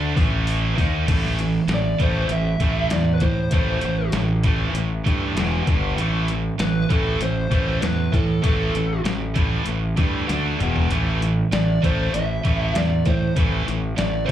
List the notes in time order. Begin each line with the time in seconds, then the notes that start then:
Already playing: D2 D3 A3 D4
0.15 A1 A2 E3 A3, kick, open hi-hat
0.47 open hi-hat
0.75 D#2 D#3 A#3 D#4, kick, open hi-hat
1.06 A1 A2 E3 A3, kick, closed hi-hat, crash
1.10 E3
1.25 snare
1.37 A2 E3, closed hi-hat
1.68 A1 A2 E3, snare, closed hi-hat
1.74 D5
1.98 A1 A2 E3 A3 C5, kick, closed hi-hat
2.29 A1 A2 E3 E5, closed hi-hat
2.60 A1 A2 E3 A3, kick, closed hi-hat
2.90 E2 A2 E3 D5, snare, closed hi-hat
3.14 B4
3.20 A2 E3 C5, kick, closed hi-hat
3.51 A1 A2 E3 A3 C5, kick, closed hi-hat
3.81 A1 A2 E3, closed hi-hat
4.12 A1 A2 E3, snare, closed hi-hat
4.43 A2 E3 A3, kick, closed hi-hat
4.73 A1 A2 E3, closed hi-hat
5.04 G2 A2 E3 A3, kick, closed hi-hat
5.35 E1 E2 B2 E3, snare, closed hi-hat
5.40 E3
5.65 G1 G2 D3 G3, kick, closed hi-hat
5.96 A1 A2 E3 A3, closed hi-hat
6.28 A2 E3, closed hi-hat
6.58 A1 A2 E3 B4, snare, closed hi-hat
6.89 A1 A2 E3 A3 A4, kick, closed hi-hat
7.20 A1 A2 E3 C5, closed hi-hat
7.51 A1 A2 E3 A3, kick, closed hi-hat
7.82 E2 A2 E3 B4, snare, closed hi-hat
8.12 A2 E3 A4, kick, closed hi-hat
8.42 A1 A2 E3 A3 A4, kick, closed hi-hat
8.74 A1 A2 E3, closed hi-hat
9.04 A1 A2 E3, snare, closed hi-hat
9.34 A2 E3 A3, kick, closed hi-hat
9.66 A1 A2 E3, closed hi-hat
9.97 G2 A2 E3 A3, kick, closed hi-hat
10.27 D2 D3 A3 D4, snare, closed hi-hat
10.58 E1 E2 B2 E3, closed hi-hat, mid tom
10.76 floor tom
10.90 A1 A2 E3 A3, closed hi-hat
11.21 A2 E3, closed hi-hat
11.52 A1 A2 E3 D5, snare, closed hi-hat
11.82 A1 A2 E3 A3 C5, kick, closed hi-hat
12.13 A1 A2 E3 E5, closed hi-hat
12.43 A1 A2 E3 A3, kick, closed hi-hat
12.74 E2 A2 E3 D5, snare, closed hi-hat
13.05 A2 E3 C5, kick, closed hi-hat
13.36 A1 A2 E3 A3, kick, closed hi-hat
13.66 A1 A2 E3, closed hi-hat
13.96 A1 A2 E3 D5, snare, closed hi-hat
14.26 A2 E3 A3 C5